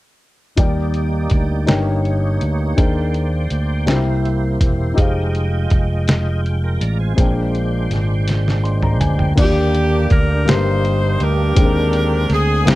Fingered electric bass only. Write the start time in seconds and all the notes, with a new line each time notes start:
0.57 D#2
1.32 D2
1.68 G1
2.42 D2
2.78 D#2
3.51 D2
3.87 C2
4.61 E1
4.98 F1
5.71 F1
6.81 A1
7.17 A#1
7.90 G#1
9.00 D2
9.37 D#2
10.11 D2
10.47 G1
11.20 D2
11.56 D#2
12.30 D2
12.66 C2